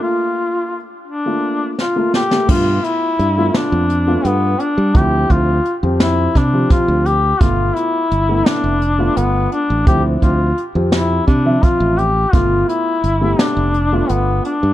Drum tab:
CC |--------------|x-------------|--------------|--------------|
HH |--------------|--x-x-x-x-x-x-|x-x-x-x-x-x-x-|x-x-x-x-x-x-x-|
SD |----------o-oo|------o-------|------o-o-o---|------o-------|
BD |--------------|o-------------|o-o-----o-o---|o-------------|

CC |--------------|--------------|
HH |x-x-x-x-x-x-x-|x-x-x-x-x-x-x-|
SD |------o-------|------o-------|
BD |o-o-----o-o---|o-------------|